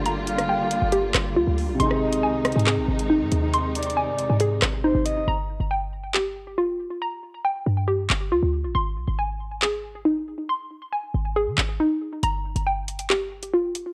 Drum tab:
HH |x-----x--x--------x-----x-----x-----------o-----|x--------x--------x-x-x----------x--------x-----|x-----x-x-x-------x-----x-----x-----------x-----|------------------------------------------------|
CP |------------------------------x-----------------|------------------------x-----------------------|------------------------------x-----------------|------------------------x-----------------------|
SD |---------r--------------------r-----------------|---r--------------r-----------------------------|------------------------------r-----------------|------------------------------------------------|

HH |------------------------------------------------|------------------------------------------------|------------------------------------------------|x--------x--------x--x-----------x--------x-----|
CP |------------------------------x-----------------|------------------------x-----------------------|------------------------------x-----------------|------------------------x-----------------------|
SD |------------------------------------------------|------------------------------------------------|------------------------------------------------|------------------------------------------------|